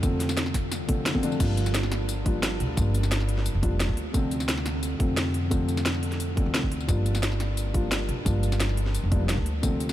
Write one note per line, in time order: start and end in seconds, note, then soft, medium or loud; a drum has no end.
0.00 0.89 F2 medium
0.00 0.02 C3 medium
0.00 0.86 C3 medium
0.00 0.02 D3 medium
0.00 0.86 D3 medium
0.00 0.03 F3 medium
0.00 0.87 F3 medium
0.00 0.04 A3 medium
0.00 0.87 A3 medium
0.00 0.04 C4 loud
0.00 kick loud
0.00 closed hi-hat medium
0.00 tambourine soft
0.04 0.87 C4 loud
0.20 snare soft
0.20 closed hi-hat loud
0.20 tambourine soft
0.29 snare soft
0.29 tambourine medium
0.37 snare loud
0.37 closed hi-hat medium
0.37 tambourine medium
0.46 snare soft
0.54 kick medium
0.54 snare medium
0.54 closed hi-hat loud
0.54 tambourine soft
0.72 snare medium
0.72 closed hi-hat medium
0.72 tambourine medium
0.88 1.06 A1 medium
0.88 1.12 C3 medium
0.88 1.12 D3 medium
0.88 1.12 F3 medium
0.88 1.13 A3 medium
0.88 1.13 C4 medium
0.88 kick loud
0.88 closed hi-hat loud
1.06 1.39 F2 medium
1.06 snare loud
1.06 closed hi-hat medium
1.06 tambourine medium
1.14 1.21 C3 medium
1.14 1.21 D3 medium
1.14 1.21 F3 medium
1.14 1.21 A3 medium
1.14 1.21 C4 loud
1.14 kick medium
1.22 1.38 C3 loud
1.22 1.38 D3 medium
1.22 1.37 F3 medium
1.22 1.38 A3 medium
1.22 1.38 D4 loud
1.22 closed hi-hat medium
1.22 tambourine soft
1.32 tambourine soft
1.39 2.62 G1 loud
1.39 2.23 F3 medium
1.39 2.23 G3 medium
1.39 2.24 A#3 medium
1.39 2.24 D4 medium
1.39 2.25 F4 medium
1.39 kick loud
1.39 closed hi-hat medium
1.39 crash loud
1.39 tambourine soft
1.57 closed hi-hat medium
1.57 tambourine soft
1.66 snare soft
1.66 tambourine medium
1.75 snare loud
1.75 closed hi-hat loud
1.75 tambourine soft
1.83 snare soft
1.92 snare medium
1.92 closed hi-hat medium
2.09 closed hi-hat medium
2.09 tambourine soft
2.24 2.74 F3 medium
2.24 2.75 G3 medium
2.24 2.75 A#3 medium
2.24 2.75 D4 medium
2.24 2.76 F4 medium
2.24 kick loud
2.24 closed hi-hat medium
2.43 snare loud
2.43 closed hi-hat loud
2.43 tambourine soft
2.60 2.76 D2 medium
2.60 closed hi-hat medium
2.76 3.53 G1 loud
2.76 3.60 F3 medium
2.76 3.61 G3 medium
2.76 3.61 A#3 medium
2.76 3.61 D4 medium
2.76 3.62 F4 medium
2.76 kick loud
2.76 closed hi-hat medium
2.76 tambourine soft
2.94 closed hi-hat medium
2.94 tambourine soft
3.03 snare soft
3.03 tambourine medium
3.12 snare loud
3.12 closed hi-hat medium
3.12 tambourine soft
3.20 snare soft
3.29 closed hi-hat medium
3.38 snare soft
3.46 closed hi-hat medium
3.46 tambourine soft
3.55 3.88 F1 medium
3.62 3.96 F3 medium
3.62 3.96 G3 medium
3.62 3.96 A#3 medium
3.62 3.96 D4 medium
3.62 3.96 F4 medium
3.62 kick loud
3.62 closed hi-hat medium
3.80 snare loud
3.80 closed hi-hat loud
3.80 tambourine soft
3.89 4.99 D2 loud
3.89 kick medium
3.97 closed hi-hat medium
4.13 4.97 C3 medium
4.13 4.98 D3 medium
4.13 4.98 F3 medium
4.13 4.98 A3 medium
4.13 4.99 C4 loud
4.13 kick loud
4.13 closed hi-hat medium
4.13 tambourine soft
4.31 closed hi-hat medium
4.31 tambourine soft
4.40 snare soft
4.40 tambourine medium
4.49 snare loud
4.49 closed hi-hat medium
4.49 tambourine soft
4.58 snare soft
4.66 snare medium
4.66 closed hi-hat medium
4.83 closed hi-hat medium
4.83 tambourine soft
4.99 6.36 F2 medium
4.99 5.48 C3 medium
4.99 5.49 D3 medium
4.99 5.49 F3 medium
4.99 5.50 A3 medium
4.99 5.50 C4 medium
4.99 kick loud
4.99 closed hi-hat medium
5.17 snare loud
5.17 closed hi-hat medium
5.17 tambourine soft
5.34 closed hi-hat medium
5.50 6.34 C3 medium
5.50 6.35 D3 medium
5.50 6.35 F3 medium
5.50 6.35 A3 medium
5.50 6.36 C4 loud
5.50 kick loud
5.50 closed hi-hat medium
5.50 tambourine soft
5.69 closed hi-hat medium
5.69 tambourine soft
5.77 snare soft
5.77 tambourine medium
5.86 snare loud
5.86 closed hi-hat medium
5.86 tambourine soft
5.95 snare soft
6.03 closed hi-hat medium
6.12 snare soft
6.12 closed hi-hat soft
6.20 closed hi-hat medium
6.20 tambourine soft
6.36 6.86 C3 medium
6.36 6.86 D3 medium
6.36 6.86 F3 medium
6.36 6.87 A3 medium
6.36 6.87 C4 medium
6.36 kick loud
6.36 closed hi-hat medium
6.46 6.87 D2 loud
6.54 snare loud
6.54 closed hi-hat medium
6.54 tambourine soft
6.63 kick medium
6.72 closed hi-hat medium
6.80 tambourine soft
6.87 8.10 G1 loud
6.87 7.72 F3 medium
6.87 7.72 G3 medium
6.87 7.72 A#3 medium
6.87 7.73 D4 medium
6.87 7.73 F4 medium
6.87 kick loud
6.87 closed hi-hat medium
6.87 tambourine soft
7.06 closed hi-hat medium
7.06 tambourine soft
7.15 snare soft
7.15 tambourine medium
7.23 snare loud
7.23 closed hi-hat medium
7.23 tambourine medium
7.32 snare soft
7.40 snare medium
7.40 closed hi-hat medium
7.57 closed hi-hat medium
7.57 tambourine soft
7.73 8.23 F3 medium
7.73 8.24 G3 medium
7.73 8.24 A#3 medium
7.73 8.24 D4 medium
7.73 8.25 F4 medium
7.73 kick loud
7.73 closed hi-hat medium
7.92 snare loud
7.92 closed hi-hat medium
7.92 tambourine medium
8.09 8.24 D2 medium
8.09 closed hi-hat medium
8.24 9.02 G1 loud
8.24 9.09 F3 medium
8.24 9.09 G3 medium
8.24 9.10 A#3 medium
8.24 9.10 D4 medium
8.24 9.10 F4 loud
8.24 kick loud
8.24 closed hi-hat medium
8.24 tambourine medium
8.43 closed hi-hat medium
8.43 tambourine soft
8.52 snare soft
8.52 tambourine medium
8.60 snare loud
8.60 closed hi-hat medium
8.60 tambourine medium
8.69 snare soft
8.77 closed hi-hat medium
8.86 snare soft
8.95 closed hi-hat medium
8.95 tambourine medium
9.03 9.36 F1 medium
9.11 9.45 F3 medium
9.11 9.45 G3 medium
9.11 9.45 A#3 medium
9.11 9.45 D4 medium
9.11 9.45 F4 medium
9.11 kick loud
9.11 closed hi-hat medium
9.29 snare loud
9.29 closed hi-hat loud
9.29 tambourine medium
9.38 9.93 D2 loud
9.38 kick medium
9.46 closed hi-hat medium
9.62 9.93 C3 medium
9.62 9.93 D3 medium
9.62 9.93 F3 medium
9.62 9.93 A3 medium
9.62 9.93 C4 loud
9.62 kick loud
9.62 closed hi-hat medium
9.62 tambourine medium
9.80 closed hi-hat medium
9.80 tambourine soft
9.89 snare soft
9.89 tambourine medium